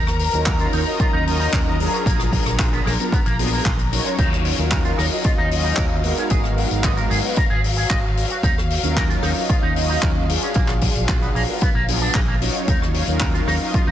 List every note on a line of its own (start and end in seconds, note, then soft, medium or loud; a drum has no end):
0.00 0.27 D#2 loud
0.00 4.20 A#4 medium
0.00 4.20 A#5 medium
0.07 cross-stick medium
0.19 open hi-hat loud
0.33 0.67 D#2 medium
0.33 0.83 F#3 medium
0.33 0.83 C#4 medium
0.33 0.84 D#4 medium
0.33 0.84 F4 medium
0.33 0.84 A#4 loud
0.33 closed hi-hat medium
0.46 0.54 A#4 medium
0.46 kick loud
0.46 clap loud
0.46 closed hi-hat medium
0.59 0.67 F4 medium
0.59 closed hi-hat medium
0.73 0.82 D#2 medium
0.73 0.80 D#4 loud
0.73 open hi-hat loud
0.87 1.23 F#3 medium
0.87 1.23 C#4 medium
0.87 1.23 D#4 medium
0.87 1.24 F4 medium
0.87 1.24 D#5 medium
1.00 1.07 F4 medium
1.00 muted fingered electric bass stroke soft
1.00 kick loud
1.00 closed hi-hat medium
1.13 1.46 D#2 loud
1.13 1.23 D#4 loud
1.26 1.76 F#3 loud
1.26 1.76 C#4 medium
1.26 1.77 D#4 medium
1.26 1.77 F4 medium
1.26 1.77 D#5 loud
1.26 open hi-hat loud
1.40 1.50 D#4 medium
1.53 1.86 D#2 medium
1.53 1.60 A#4 medium
1.53 kick loud
1.53 clap loud
1.53 closed hi-hat medium
1.79 2.43 F#3 medium
1.79 2.43 D4 medium
1.79 2.43 F4 medium
1.79 2.44 G#4 loud
1.79 open hi-hat loud
1.93 1.99 C#4 medium
1.93 closed hi-hat medium
2.06 2.39 A#1 loud
2.06 2.16 A#3 medium
2.06 kick loud
2.06 closed hi-hat medium
2.19 cross-stick medium
2.19 closed hi-hat medium
2.33 kick medium
2.33 open hi-hat loud
2.46 2.79 A#1 medium
2.46 2.96 F#3 medium
2.46 2.96 D4 medium
2.46 2.96 F4 medium
2.46 2.96 G#4 medium
2.46 cross-stick medium
2.46 closed hi-hat medium
2.59 2.66 F4 medium
2.59 kick loud
2.59 clap loud
2.59 closed hi-hat medium
2.73 2.79 B3 medium
2.73 closed hi-hat soft
2.86 2.95 A#1 loud
2.86 2.92 A#3 loud
2.86 cross-stick medium
2.86 open hi-hat loud
2.99 3.14 F#3 medium
2.99 3.14 B3 medium
2.99 3.14 D4 medium
2.99 3.14 F4 medium
2.99 3.14 A#4 medium
2.99 closed hi-hat medium
3.12 3.19 B3 medium
3.12 kick loud
3.12 closed hi-hat medium
3.26 3.59 A#1 loud
3.26 3.36 A#3 loud
3.26 closed hi-hat medium
3.39 3.49 F#3 loud
3.39 3.49 B3 medium
3.39 3.49 D4 medium
3.39 3.49 F4 medium
3.39 3.49 G#4 loud
3.39 open hi-hat loud
3.52 3.67 F#3 medium
3.52 3.62 A#3 medium
3.52 3.67 B3 medium
3.52 3.67 D4 medium
3.52 3.67 F4 medium
3.52 3.67 G#4 medium
3.52 open hi-hat medium
3.65 3.98 A#1 loud
3.65 3.72 F4 medium
3.65 kick loud
3.65 clap loud
3.79 closed hi-hat medium
3.91 4.55 F#3 medium
3.91 4.55 C#4 medium
3.91 4.55 D#4 medium
3.91 4.56 F4 medium
3.91 4.56 C#5 medium
3.91 open hi-hat loud
4.05 4.12 G#3 medium
4.05 closed hi-hat medium
4.18 4.52 D#2 loud
4.18 12.69 F#3 medium
4.18 4.29 D#4 medium
4.18 12.67 F5 medium
4.18 kick loud
4.18 closed hi-hat medium
4.18 crash medium
4.33 cross-stick medium
4.45 open hi-hat loud
4.58 4.91 D#2 medium
4.58 5.08 F#3 medium
4.58 5.08 C#4 medium
4.58 5.08 D#4 medium
4.58 5.09 F4 medium
4.58 5.09 A#4 loud
4.58 closed hi-hat medium
4.71 4.78 A#4 medium
4.71 kick loud
4.71 clap loud
4.71 closed hi-hat medium
4.85 4.92 F4 medium
4.85 closed hi-hat medium
4.98 5.07 D#2 medium
4.98 5.05 D#4 loud
4.98 cross-stick medium
4.98 open hi-hat loud
5.11 5.48 F#3 medium
5.11 5.48 C#4 medium
5.11 5.48 D#4 medium
5.11 5.49 F4 medium
5.11 5.49 D#5 medium
5.24 5.31 F4 medium
5.24 muted fingered electric bass stroke soft
5.24 kick loud
5.24 closed hi-hat medium
5.38 5.71 D#2 loud
5.38 5.48 D#4 loud
5.51 6.01 F#3 medium
5.51 6.01 C#4 medium
5.51 6.01 D#4 medium
5.51 6.01 F4 medium
5.51 6.02 D#5 loud
5.51 open hi-hat loud
5.64 5.74 D#4 medium
5.76 6.11 D#2 medium
5.76 5.84 A#4 medium
5.76 kick loud
5.76 clap loud
5.76 closed hi-hat medium
6.03 6.67 G#3 loud
6.03 6.67 B3 medium
6.03 6.68 D#4 medium
6.03 6.68 F#4 medium
6.03 6.68 A#4 loud
6.03 open hi-hat loud
6.17 6.24 C#4 medium
6.17 closed hi-hat medium
6.30 6.64 G#1 loud
6.30 6.41 G#4 medium
6.30 kick loud
6.30 closed hi-hat loud
6.44 cross-stick medium
6.58 open hi-hat loud
6.70 7.04 G#1 medium
6.70 7.20 G#3 medium
6.70 7.21 B3 medium
6.70 7.21 D#4 medium
6.70 7.21 F#4 medium
6.70 7.21 A#4 medium
6.70 closed hi-hat medium
6.83 6.91 D#5 medium
6.83 kick loud
6.83 clap loud
6.83 closed hi-hat medium
6.97 7.04 A#4 medium
6.97 closed hi-hat medium
7.10 7.20 G#1 loud
7.10 7.17 G#4 loud
7.10 open hi-hat loud
7.23 7.38 G#3 medium
7.23 7.38 B3 medium
7.23 7.39 D#4 medium
7.23 7.39 F#4 medium
7.23 7.39 B4 medium
7.36 7.44 A#4 medium
7.36 kick loud
7.36 closed hi-hat loud
7.50 7.83 G#1 loud
7.50 7.60 G#4 loud
7.64 open hi-hat loud
7.77 7.87 G#4 medium
7.77 open hi-hat medium
7.90 8.23 G#1 medium
7.90 7.97 D#5 medium
7.90 kick loud
7.90 clap loud
8.17 open hi-hat loud
8.30 8.37 F#4 medium
8.30 closed hi-hat medium
8.43 8.76 D#2 loud
8.43 8.54 D#4 medium
8.43 kick loud
8.43 closed hi-hat medium
8.58 cross-stick medium
8.70 open hi-hat loud
8.83 9.16 D#2 medium
8.83 9.33 F#3 medium
8.83 9.33 C#4 medium
8.83 9.33 D#4 medium
8.83 9.33 F4 medium
8.83 9.34 A#4 loud
8.83 closed hi-hat medium
8.96 9.03 A#4 medium
8.96 kick loud
8.96 clap loud
8.96 closed hi-hat medium
9.10 9.16 F4 medium
9.10 closed hi-hat medium
9.23 9.32 D#2 loud
9.23 9.30 D#4 loud
9.23 cross-stick medium
9.23 open hi-hat loud
9.36 9.73 F#3 medium
9.36 9.73 C#4 medium
9.36 9.73 D#4 medium
9.36 9.73 F4 medium
9.36 9.73 D#5 medium
9.49 9.56 F4 medium
9.49 muted fingered electric bass stroke soft
9.49 kick loud
9.49 closed hi-hat medium
9.63 9.96 D#2 loud
9.63 9.73 D#4 loud
9.76 10.26 F#3 loud
9.76 10.26 C#4 medium
9.76 10.26 D#4 medium
9.76 10.26 F4 medium
9.76 10.26 D#5 loud
9.76 open hi-hat loud
9.89 9.99 D#4 medium
10.02 10.36 D#2 medium
10.02 10.09 A#4 medium
10.02 kick loud
10.02 clap loud
10.28 10.92 F#3 medium
10.28 10.93 D4 medium
10.28 10.93 F4 medium
10.28 10.93 G#4 loud
10.28 open hi-hat loud
10.42 10.49 C#4 medium
10.42 closed hi-hat medium
10.54 10.89 A#1 loud
10.54 10.66 A#3 medium
10.54 kick loud
10.54 closed hi-hat medium
10.68 cross-stick medium
10.68 clap soft
10.81 kick medium
10.81 open hi-hat loud
10.95 11.29 A#1 medium
10.95 11.45 F#3 medium
10.95 11.46 D4 medium
10.95 11.46 F4 medium
10.95 11.46 G#4 medium
10.95 closed hi-hat medium
11.09 11.16 F4 medium
11.09 kick loud
11.09 clap loud
11.09 closed hi-hat medium
11.22 11.29 B3 medium
11.22 closed hi-hat medium
11.35 11.44 A#1 medium
11.35 11.42 A#3 loud
11.35 open hi-hat loud
11.48 11.63 F#3 medium
11.48 11.63 B3 medium
11.48 11.63 D4 medium
11.48 11.64 F4 medium
11.48 11.64 A#4 medium
11.61 11.69 B3 medium
11.61 kick loud
11.61 closed hi-hat medium
11.75 12.08 A#1 loud
11.75 11.85 A#3 loud
11.88 11.98 F#3 loud
11.88 11.98 B3 medium
11.88 11.99 D4 medium
11.88 11.99 F4 medium
11.88 11.99 G#4 loud
11.88 open hi-hat loud
12.01 12.16 F#3 medium
12.01 12.16 B3 medium
12.01 12.12 D4 loud
12.01 12.16 D4 medium
12.01 12.16 F4 medium
12.01 12.17 G#4 medium
12.01 open hi-hat medium
12.14 12.48 A#1 medium
12.14 12.19 A#3 loud
12.14 kick loud
12.14 clap loud
12.28 12.35 A#3 loud
12.40 13.04 F#3 medium
12.40 13.05 C#4 medium
12.40 13.05 D#4 medium
12.40 13.05 F4 medium
12.40 13.05 C#5 medium
12.40 open hi-hat loud
12.55 closed hi-hat medium
12.68 13.01 D#2 loud
12.68 12.78 D#4 medium
12.68 13.91 F5 medium
12.68 kick loud
12.68 closed hi-hat medium
12.82 cross-stick medium
12.94 open hi-hat loud
13.08 13.41 D#2 medium
13.08 13.58 F#3 medium
13.08 13.58 C#4 medium
13.08 13.58 D#4 medium
13.08 13.58 F4 medium
13.08 13.58 A#4 loud
13.08 closed hi-hat medium
13.20 13.28 A#4 medium
13.20 kick loud
13.20 clap loud
13.20 closed hi-hat medium
13.34 13.41 F4 medium
13.34 closed hi-hat soft
13.47 13.57 D#2 loud
13.47 13.54 D#4 loud
13.47 cross-stick medium
13.47 open hi-hat loud
13.61 13.91 F#3 medium
13.61 13.91 C#4 medium
13.61 13.91 D#4 medium
13.61 13.91 F4 medium
13.61 13.91 D#5 medium
13.74 13.81 F4 medium
13.74 muted fingered electric bass stroke soft
13.74 kick loud
13.74 closed hi-hat medium
13.87 13.91 D#2 loud
13.87 13.91 D#4 loud